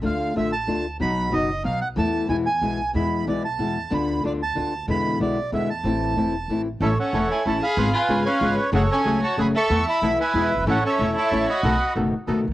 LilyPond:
<<
  \new Staff \with { instrumentName = "Bandoneon" } { \time 3/4 \key e \phrygian \tempo 4 = 187 << { f''4 e''8 a''4. | b''4 dis''4 f''8 fis''8 | a''4 gis''8 gis''4. | b''4 d''8 a''4. |
b''4 d''8 a''4. | b''4 d''4 e''8 a''8~ | a''2~ a''8 r8 | \key a \major e''8 fis''4 gis''8 a''8 b''8~ |
b''8 gis''4 eis''4 r8 | fis''8 gis''4 a''8 b''8 cis'''8~ | cis'''8 b''4 gis''4 r8 | fis''8 e''4 a''4 b''8~ |
b''4 r2 | } \\ { r2. | r2. | r2. | r2. |
r2. | r2. | r2. | <a' cis''>8 <a' cis''>4. r8 f''8~ |
f''8 <b' eis''>4 <b' cis''>4. | <a' cis''>8 cis''4. r8 <e'' a''>8~ | <e'' a''>8 e''4 <b' e''>4. | <a' cis''>8 <a' cis''>4 <cis'' e''>4 <dis'' fis''>8~ |
<dis'' fis''>4 r2 | } >> }
  \new Staff \with { instrumentName = "Bandoneon" } { \time 3/4 \key e \phrygian r2. | r2. | r2. | r2. |
r2. | r2. | r2. | \key a \major <cis' e' a'>8 r8 <cis' e' a'>8 r8 <cis' e' a'>8 r8 |
<cis' eis' b'>8 r8 <cis' eis' b'>8 r8 <cis' eis' b'>8 r8 | <a fis' gis'>8 r8 <a fis' gis'>8 r8 <a fis' gis'>8 r8 | <b e' a'>8 r8 <b e' a'>8 r8 <b e' gis'>8 r8 | <cis' e' a'>8 r8 <cis' e' a'>8 r8 <cis' e' a'>8 r8 |
<b dis' a'>8 r8 <b dis' a'>8 r8 <b dis' a'>8 r8 | }
  \new Staff \with { instrumentName = "Violin" } { \time 3/4 \key e \phrygian r2. | r2. | r2. | r2. |
r2. | r2. | r2. | \key a \major cis'8 cis'4 e'8 e'8 gis'8~ |
gis'8 eis'4 cis'4 r8 | cis'8 cis'4 fis'8 gis'8 a'8~ | a'8 e'4 e'4 r8 | cis'8 cis'4 e'4 fis'8~ |
fis'4 r2 | }
  \new Staff \with { instrumentName = "Nylon-string guitar" } { \time 3/4 \key e \phrygian <d a d' f'>4 <d a d' f'>8 r8 <d a d' f'>8 r8 | <b, fis b dis' fis'>4 <b, fis b dis' fis'>8 r8 <b, fis b dis' fis'>8 r8 | <e a b e'>4 <b, e gis b e'>8 r8 <b, e gis b e'>8 r8 | <b, e gis b e'>4 <b, e gis b e'>8 r8 <b, e gis b e'>8 r8 |
<d b d' f'>4 <d b d' f'>8 r8 <d b d' f'>8 r8 | <b, d gis b e'>4 <b, d gis b e'>8 r8 <b, d gis b e'>8 r8 | <e a c' e'>4 <e a c' e'>8 r8 <e a c' e'>8 r8 | \key a \major <e a cis' e'>8 r8 <e a cis' e'>8 r8 <e a cis' e'>8 r8 |
<cis gis b eis' gis'>8 r8 <cis gis b eis' gis'>8 r8 <cis gis b eis' gis'>8 r8 | <cis fis a cis' gis'>8 r8 <cis fis a cis' gis'>8 r8 <cis fis a cis' gis'>8 r8 | <e a b e'>8 r8 <e a b e'>8 r8 <b, e gis b e'>8 r8 | <e a cis' e'>8 r8 <e a cis' e'>8 r8 <e a cis' e'>8 r8 |
<b, dis a b fis'>8 r8 <b, dis a b fis'>8 r8 <b, dis a b fis'>8 r8 | }
  \new Staff \with { instrumentName = "Upright bass" } { \clef bass \time 3/4 \key e \phrygian d,4 a,,4 d,4 | b,,4 fis,,4 b,,4 | e,4 e,4 b,,4 | e,4 b,,4 e,4 |
d,4 d,4 d,4 | e,4 b,,4 e,4 | a,,4 e,,4 a,,4 | \key a \major a,,16. r8 r32 e,,16. r8 r32 a,,16. r8 r32 |
gis,,16. r8 r32 gis,,16. r8 r32 gis,,16. r8 r32 | fis,,16. r8 r32 cis,16. r8 r32 fis,,16. r8 r32 | e,16. r8 r32 b,,16. r8 r32 e,16. r16 fis,,32 g,,32 gis,,32 | a,,16. r8 r32 e,,16. r8 r32 a,,16. r8 r32 |
b,,16. r8 r32 fis,,16. r8 r32 b,,16. r16 cis,32 r16 | }
>>